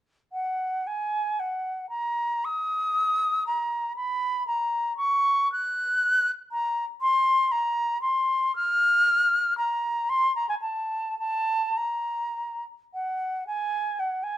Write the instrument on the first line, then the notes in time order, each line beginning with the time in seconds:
flute
0.32 F#5
0.87 G#5
1.39 F#5
1.89 A#5
2.45 D#6
3.47 A#5
3.96 B5
4.47 A#5
4.97 C#6
5.52 F#6
6.52 A#5
7.01 C6
7.51 A#5
8.01 C6
8.55 F6
9.58 A#5
10.09 C6
10.36 A#5
10.49 G#5
10.61 A5
11.19 A5
11.77 A#5
12.94 F#5
13.47 G#5
13.99 F#5
14.23 G#5